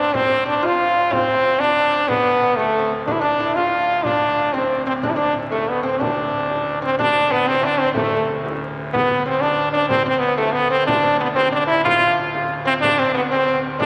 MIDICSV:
0, 0, Header, 1, 5, 480
1, 0, Start_track
1, 0, Tempo, 325380
1, 198, Time_signature, 6, 3, 24, 8
1, 20442, End_track
2, 0, Start_track
2, 0, Title_t, "French horn"
2, 0, Program_c, 0, 60
2, 0, Note_on_c, 0, 62, 88
2, 222, Note_on_c, 0, 60, 91
2, 244, Note_off_c, 0, 62, 0
2, 692, Note_off_c, 0, 60, 0
2, 706, Note_on_c, 0, 62, 85
2, 970, Note_on_c, 0, 65, 90
2, 992, Note_off_c, 0, 62, 0
2, 1664, Note_on_c, 0, 60, 93
2, 1686, Note_off_c, 0, 65, 0
2, 2359, Note_on_c, 0, 62, 89
2, 2381, Note_off_c, 0, 60, 0
2, 3076, Note_on_c, 0, 59, 90
2, 3098, Note_off_c, 0, 62, 0
2, 3786, Note_on_c, 0, 57, 80
2, 3808, Note_off_c, 0, 59, 0
2, 4340, Note_off_c, 0, 57, 0
2, 4521, Note_on_c, 0, 62, 91
2, 4600, Note_on_c, 0, 64, 76
2, 4622, Note_off_c, 0, 62, 0
2, 4724, Note_on_c, 0, 62, 94
2, 4746, Note_off_c, 0, 64, 0
2, 5235, Note_on_c, 0, 65, 88
2, 5257, Note_off_c, 0, 62, 0
2, 5949, Note_on_c, 0, 62, 95
2, 5971, Note_off_c, 0, 65, 0
2, 6690, Note_on_c, 0, 60, 81
2, 6712, Note_off_c, 0, 62, 0
2, 7168, Note_off_c, 0, 60, 0
2, 7176, Note_on_c, 0, 60, 82
2, 7285, Note_off_c, 0, 60, 0
2, 7431, Note_on_c, 0, 62, 86
2, 7527, Note_on_c, 0, 64, 73
2, 7549, Note_off_c, 0, 62, 0
2, 7606, Note_on_c, 0, 62, 89
2, 7628, Note_off_c, 0, 64, 0
2, 7892, Note_off_c, 0, 62, 0
2, 8121, Note_on_c, 0, 57, 80
2, 8395, Note_on_c, 0, 59, 78
2, 8417, Note_off_c, 0, 57, 0
2, 8610, Note_off_c, 0, 59, 0
2, 8619, Note_on_c, 0, 60, 73
2, 8868, Note_on_c, 0, 62, 82
2, 8890, Note_off_c, 0, 60, 0
2, 10064, Note_off_c, 0, 62, 0
2, 10081, Note_on_c, 0, 60, 86
2, 10295, Note_off_c, 0, 60, 0
2, 10321, Note_on_c, 0, 62, 103
2, 10791, Note_on_c, 0, 59, 91
2, 10813, Note_off_c, 0, 62, 0
2, 11029, Note_on_c, 0, 60, 93
2, 11051, Note_off_c, 0, 59, 0
2, 11231, Note_on_c, 0, 64, 69
2, 11253, Note_off_c, 0, 60, 0
2, 11273, Note_on_c, 0, 62, 93
2, 11295, Note_off_c, 0, 64, 0
2, 11499, Note_on_c, 0, 60, 94
2, 11521, Note_off_c, 0, 62, 0
2, 11706, Note_off_c, 0, 60, 0
2, 11715, Note_on_c, 0, 57, 82
2, 12229, Note_off_c, 0, 57, 0
2, 13180, Note_on_c, 0, 59, 88
2, 13626, Note_off_c, 0, 59, 0
2, 13676, Note_on_c, 0, 60, 84
2, 13885, Note_on_c, 0, 62, 98
2, 13907, Note_off_c, 0, 60, 0
2, 14342, Note_off_c, 0, 62, 0
2, 14351, Note_on_c, 0, 62, 85
2, 14577, Note_off_c, 0, 62, 0
2, 14586, Note_on_c, 0, 60, 92
2, 14824, Note_off_c, 0, 60, 0
2, 14830, Note_on_c, 0, 60, 83
2, 15042, Note_on_c, 0, 59, 77
2, 15064, Note_off_c, 0, 60, 0
2, 15291, Note_off_c, 0, 59, 0
2, 15300, Note_on_c, 0, 57, 85
2, 15523, Note_on_c, 0, 59, 88
2, 15545, Note_off_c, 0, 57, 0
2, 15785, Note_off_c, 0, 59, 0
2, 15794, Note_on_c, 0, 60, 88
2, 16027, Note_off_c, 0, 60, 0
2, 16033, Note_on_c, 0, 62, 94
2, 16489, Note_off_c, 0, 62, 0
2, 16529, Note_on_c, 0, 59, 78
2, 16638, Note_off_c, 0, 59, 0
2, 16742, Note_on_c, 0, 60, 97
2, 16980, Note_off_c, 0, 60, 0
2, 16999, Note_on_c, 0, 62, 94
2, 17210, Note_off_c, 0, 62, 0
2, 17219, Note_on_c, 0, 64, 94
2, 17457, Note_off_c, 0, 64, 0
2, 17481, Note_on_c, 0, 65, 107
2, 17987, Note_off_c, 0, 65, 0
2, 18688, Note_on_c, 0, 60, 99
2, 18796, Note_off_c, 0, 60, 0
2, 18901, Note_on_c, 0, 62, 109
2, 19161, Note_on_c, 0, 60, 91
2, 19183, Note_off_c, 0, 62, 0
2, 19376, Note_off_c, 0, 60, 0
2, 19385, Note_on_c, 0, 59, 81
2, 19498, Note_off_c, 0, 59, 0
2, 19620, Note_on_c, 0, 60, 95
2, 20077, Note_off_c, 0, 60, 0
2, 20347, Note_on_c, 0, 62, 89
2, 20442, Note_off_c, 0, 62, 0
2, 20442, End_track
3, 0, Start_track
3, 0, Title_t, "Lute"
3, 0, Program_c, 1, 24
3, 0, Note_on_c, 1, 60, 79
3, 186, Note_off_c, 1, 60, 0
3, 204, Note_on_c, 1, 60, 74
3, 396, Note_off_c, 1, 60, 0
3, 414, Note_on_c, 1, 60, 78
3, 675, Note_off_c, 1, 60, 0
3, 676, Note_on_c, 1, 62, 74
3, 916, Note_off_c, 1, 62, 0
3, 922, Note_on_c, 1, 65, 77
3, 1636, Note_on_c, 1, 60, 78
3, 1666, Note_off_c, 1, 65, 0
3, 2311, Note_off_c, 1, 60, 0
3, 2368, Note_on_c, 1, 62, 76
3, 3070, Note_on_c, 1, 59, 72
3, 3111, Note_off_c, 1, 62, 0
3, 3549, Note_off_c, 1, 59, 0
3, 3567, Note_on_c, 1, 59, 70
3, 3720, Note_off_c, 1, 59, 0
3, 3738, Note_on_c, 1, 59, 43
3, 3812, Note_off_c, 1, 59, 0
3, 3820, Note_on_c, 1, 57, 68
3, 4108, Note_off_c, 1, 57, 0
3, 4113, Note_on_c, 1, 60, 67
3, 4336, Note_off_c, 1, 60, 0
3, 4538, Note_on_c, 1, 62, 69
3, 4629, Note_off_c, 1, 62, 0
3, 4738, Note_on_c, 1, 62, 72
3, 5010, Note_off_c, 1, 62, 0
3, 5016, Note_on_c, 1, 64, 74
3, 5256, Note_off_c, 1, 64, 0
3, 5262, Note_on_c, 1, 65, 76
3, 5993, Note_off_c, 1, 65, 0
3, 5999, Note_on_c, 1, 62, 70
3, 6695, Note_on_c, 1, 60, 71
3, 6730, Note_off_c, 1, 62, 0
3, 7159, Note_off_c, 1, 60, 0
3, 7177, Note_on_c, 1, 60, 78
3, 7425, Note_off_c, 1, 60, 0
3, 7426, Note_on_c, 1, 62, 75
3, 7516, Note_off_c, 1, 62, 0
3, 7613, Note_on_c, 1, 62, 72
3, 7876, Note_off_c, 1, 62, 0
3, 8142, Note_on_c, 1, 57, 74
3, 8597, Note_off_c, 1, 57, 0
3, 8603, Note_on_c, 1, 60, 80
3, 8853, Note_on_c, 1, 62, 58
3, 8859, Note_off_c, 1, 60, 0
3, 9998, Note_off_c, 1, 62, 0
3, 10060, Note_on_c, 1, 60, 75
3, 10306, Note_on_c, 1, 62, 89
3, 10307, Note_off_c, 1, 60, 0
3, 10773, Note_on_c, 1, 59, 72
3, 10798, Note_off_c, 1, 62, 0
3, 10995, Note_off_c, 1, 59, 0
3, 11001, Note_on_c, 1, 60, 79
3, 11233, Note_off_c, 1, 60, 0
3, 11248, Note_on_c, 1, 62, 89
3, 11718, Note_on_c, 1, 57, 64
3, 11749, Note_off_c, 1, 62, 0
3, 11993, Note_off_c, 1, 57, 0
3, 12011, Note_on_c, 1, 57, 59
3, 12248, Note_off_c, 1, 57, 0
3, 13175, Note_on_c, 1, 59, 63
3, 13623, Note_off_c, 1, 59, 0
3, 13656, Note_on_c, 1, 60, 65
3, 13905, Note_off_c, 1, 60, 0
3, 13911, Note_on_c, 1, 62, 76
3, 14364, Note_off_c, 1, 62, 0
3, 14382, Note_on_c, 1, 62, 80
3, 14614, Note_on_c, 1, 60, 70
3, 14627, Note_off_c, 1, 62, 0
3, 14823, Note_off_c, 1, 60, 0
3, 14840, Note_on_c, 1, 60, 76
3, 15082, Note_off_c, 1, 60, 0
3, 15088, Note_on_c, 1, 59, 65
3, 15298, Note_off_c, 1, 59, 0
3, 15304, Note_on_c, 1, 57, 73
3, 15765, Note_off_c, 1, 57, 0
3, 15789, Note_on_c, 1, 60, 76
3, 16050, Note_off_c, 1, 60, 0
3, 16056, Note_on_c, 1, 62, 79
3, 16274, Note_on_c, 1, 60, 81
3, 16302, Note_off_c, 1, 62, 0
3, 16448, Note_off_c, 1, 60, 0
3, 16466, Note_on_c, 1, 60, 61
3, 16520, Note_off_c, 1, 60, 0
3, 16525, Note_on_c, 1, 59, 76
3, 16754, Note_off_c, 1, 59, 0
3, 16760, Note_on_c, 1, 60, 77
3, 17005, Note_on_c, 1, 62, 76
3, 17014, Note_off_c, 1, 60, 0
3, 17248, Note_off_c, 1, 62, 0
3, 17254, Note_on_c, 1, 64, 93
3, 17479, Note_off_c, 1, 64, 0
3, 17484, Note_on_c, 1, 65, 84
3, 17786, Note_off_c, 1, 65, 0
3, 17792, Note_on_c, 1, 62, 76
3, 18014, Note_off_c, 1, 62, 0
3, 18666, Note_on_c, 1, 60, 86
3, 18924, Note_off_c, 1, 60, 0
3, 18930, Note_on_c, 1, 62, 86
3, 19170, Note_on_c, 1, 60, 88
3, 19176, Note_off_c, 1, 62, 0
3, 19415, Note_off_c, 1, 60, 0
3, 19422, Note_on_c, 1, 59, 71
3, 19637, Note_off_c, 1, 59, 0
3, 19642, Note_on_c, 1, 60, 78
3, 19866, Note_off_c, 1, 60, 0
3, 19884, Note_on_c, 1, 60, 80
3, 20107, Note_off_c, 1, 60, 0
3, 20351, Note_on_c, 1, 62, 83
3, 20442, Note_off_c, 1, 62, 0
3, 20442, End_track
4, 0, Start_track
4, 0, Title_t, "Pipe organ"
4, 0, Program_c, 2, 19
4, 0, Note_on_c, 2, 38, 60
4, 0, Note_on_c, 2, 45, 60
4, 4506, Note_off_c, 2, 38, 0
4, 4517, Note_off_c, 2, 45, 0
4, 4536, Note_on_c, 2, 38, 60
4, 4547, Note_on_c, 2, 45, 56
4, 10288, Note_off_c, 2, 38, 0
4, 10289, Note_off_c, 2, 45, 0
4, 10318, Note_on_c, 2, 38, 63
4, 10319, Note_on_c, 2, 45, 64
4, 16014, Note_off_c, 2, 45, 0
4, 16024, Note_off_c, 2, 38, 0
4, 16044, Note_on_c, 2, 45, 60
4, 16054, Note_on_c, 2, 38, 61
4, 20442, Note_off_c, 2, 38, 0
4, 20442, Note_off_c, 2, 45, 0
4, 20442, End_track
5, 0, Start_track
5, 0, Title_t, "Frame drum"
5, 213, Note_on_c, 9, 64, 73
5, 361, Note_off_c, 9, 64, 0
5, 457, Note_on_c, 9, 64, 25
5, 605, Note_off_c, 9, 64, 0
5, 700, Note_on_c, 9, 64, 25
5, 848, Note_off_c, 9, 64, 0
5, 942, Note_on_c, 9, 64, 60
5, 1089, Note_off_c, 9, 64, 0
5, 1658, Note_on_c, 9, 64, 71
5, 1806, Note_off_c, 9, 64, 0
5, 1898, Note_on_c, 9, 64, 22
5, 2046, Note_off_c, 9, 64, 0
5, 2143, Note_on_c, 9, 64, 22
5, 2291, Note_off_c, 9, 64, 0
5, 2373, Note_on_c, 9, 64, 59
5, 2520, Note_off_c, 9, 64, 0
5, 3096, Note_on_c, 9, 64, 76
5, 3243, Note_off_c, 9, 64, 0
5, 3805, Note_on_c, 9, 64, 60
5, 3953, Note_off_c, 9, 64, 0
5, 4297, Note_on_c, 9, 64, 24
5, 4444, Note_off_c, 9, 64, 0
5, 4537, Note_on_c, 9, 64, 74
5, 4684, Note_off_c, 9, 64, 0
5, 4774, Note_on_c, 9, 64, 24
5, 4922, Note_off_c, 9, 64, 0
5, 5025, Note_on_c, 9, 64, 24
5, 5172, Note_off_c, 9, 64, 0
5, 5253, Note_on_c, 9, 64, 64
5, 5401, Note_off_c, 9, 64, 0
5, 5969, Note_on_c, 9, 64, 79
5, 6117, Note_off_c, 9, 64, 0
5, 6239, Note_on_c, 9, 64, 25
5, 6387, Note_off_c, 9, 64, 0
5, 6469, Note_on_c, 9, 64, 23
5, 6617, Note_off_c, 9, 64, 0
5, 6699, Note_on_c, 9, 64, 64
5, 6847, Note_off_c, 9, 64, 0
5, 7420, Note_on_c, 9, 64, 76
5, 7567, Note_off_c, 9, 64, 0
5, 7670, Note_on_c, 9, 64, 23
5, 7817, Note_off_c, 9, 64, 0
5, 7910, Note_on_c, 9, 64, 24
5, 8058, Note_off_c, 9, 64, 0
5, 8145, Note_on_c, 9, 64, 67
5, 8293, Note_off_c, 9, 64, 0
5, 8868, Note_on_c, 9, 64, 81
5, 9015, Note_off_c, 9, 64, 0
5, 9361, Note_on_c, 9, 64, 26
5, 9508, Note_off_c, 9, 64, 0
5, 9604, Note_on_c, 9, 64, 60
5, 9752, Note_off_c, 9, 64, 0
5, 10315, Note_on_c, 9, 64, 76
5, 10462, Note_off_c, 9, 64, 0
5, 10574, Note_on_c, 9, 64, 25
5, 10722, Note_off_c, 9, 64, 0
5, 10801, Note_on_c, 9, 64, 25
5, 10948, Note_off_c, 9, 64, 0
5, 11029, Note_on_c, 9, 64, 64
5, 11177, Note_off_c, 9, 64, 0
5, 11740, Note_on_c, 9, 64, 86
5, 11888, Note_off_c, 9, 64, 0
5, 11989, Note_on_c, 9, 64, 27
5, 12136, Note_off_c, 9, 64, 0
5, 12220, Note_on_c, 9, 64, 28
5, 12368, Note_off_c, 9, 64, 0
5, 12472, Note_on_c, 9, 64, 76
5, 12620, Note_off_c, 9, 64, 0
5, 13197, Note_on_c, 9, 64, 81
5, 13344, Note_off_c, 9, 64, 0
5, 13440, Note_on_c, 9, 64, 28
5, 13588, Note_off_c, 9, 64, 0
5, 13666, Note_on_c, 9, 64, 27
5, 13813, Note_off_c, 9, 64, 0
5, 13894, Note_on_c, 9, 64, 78
5, 14041, Note_off_c, 9, 64, 0
5, 14607, Note_on_c, 9, 64, 86
5, 14755, Note_off_c, 9, 64, 0
5, 15090, Note_on_c, 9, 64, 26
5, 15238, Note_off_c, 9, 64, 0
5, 15326, Note_on_c, 9, 64, 71
5, 15473, Note_off_c, 9, 64, 0
5, 15563, Note_on_c, 9, 64, 30
5, 15711, Note_off_c, 9, 64, 0
5, 16049, Note_on_c, 9, 64, 87
5, 16196, Note_off_c, 9, 64, 0
5, 16299, Note_on_c, 9, 64, 30
5, 16446, Note_off_c, 9, 64, 0
5, 16542, Note_on_c, 9, 64, 25
5, 16689, Note_off_c, 9, 64, 0
5, 16769, Note_on_c, 9, 64, 77
5, 16917, Note_off_c, 9, 64, 0
5, 17491, Note_on_c, 9, 64, 77
5, 17639, Note_off_c, 9, 64, 0
5, 17742, Note_on_c, 9, 64, 28
5, 17890, Note_off_c, 9, 64, 0
5, 17970, Note_on_c, 9, 64, 27
5, 18117, Note_off_c, 9, 64, 0
5, 18211, Note_on_c, 9, 64, 70
5, 18358, Note_off_c, 9, 64, 0
5, 18929, Note_on_c, 9, 64, 89
5, 19076, Note_off_c, 9, 64, 0
5, 19170, Note_on_c, 9, 64, 28
5, 19318, Note_off_c, 9, 64, 0
5, 19411, Note_on_c, 9, 64, 27
5, 19559, Note_off_c, 9, 64, 0
5, 19662, Note_on_c, 9, 64, 68
5, 19810, Note_off_c, 9, 64, 0
5, 20362, Note_on_c, 9, 64, 89
5, 20442, Note_off_c, 9, 64, 0
5, 20442, End_track
0, 0, End_of_file